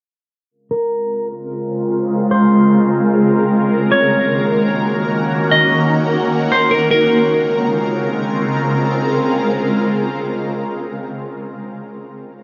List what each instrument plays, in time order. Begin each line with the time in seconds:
0.51 ambient pad C#3 G#3 C4 F4 A#4
0.71 clean electric guitar A#4
2.31 clean electric guitar C5
3.71 ambient pad D#3 A#3 C#4 F#4
3.92 clean electric guitar C#5
5.51 clean electric guitar D#5
6.52 clean electric guitar C5
6.71 clean electric guitar A#4
6.91 ambient pad C#3 G#3 C4 F4 A#4, clean electric guitar A#4